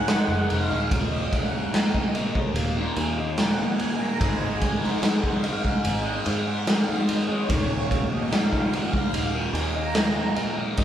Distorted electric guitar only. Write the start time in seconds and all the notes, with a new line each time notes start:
0.09 G#2 D#3 G#3
0.29 D#3 G#3
0.70 D#3 G#3
0.90 D#2 A#2 D#3
1.52 A#2 D#3
1.73 D#2 A#2
1.77 D#3
2.13 D#2 A#2 D#3
2.36 muted distorted electric guitar stroke
2.76 A#2 D#3
2.98 D#2 A#2 D#3
3.19 muted distorted electric guitar stroke
3.38 D#2 A#2 D#3
3.59 A#2 D#3
3.99 A#2 D#3
4.20 G#2 D#3 G#3
4.82 D#3 G#3
5.02 G#2 D#3
5.06 G#3
5.43 G#2 D#3 G#3
5.64 muted distorted electric guitar stroke
6.05 D#3 G#3
6.26 G#2 D#3 G#3
6.47 muted distorted electric guitar stroke
6.67 G#2 D#3 G#3
6.87 D#3 G#3
7.28 D#3 G#3
7.49 D#2 A#2 D#3
8.11 A#2 D#3
8.31 D#2 A#2 D#3
8.73 D#2 A#2 D#3
8.94 muted distorted electric guitar stroke
9.34 A#2 D#3
9.55 D#2 A#2 D#3
9.76 muted distorted electric guitar stroke
9.95 D#2 A#2 D#3
10.16 A#2 D#3
10.57 A#2 D#3
10.77 G#2 D#3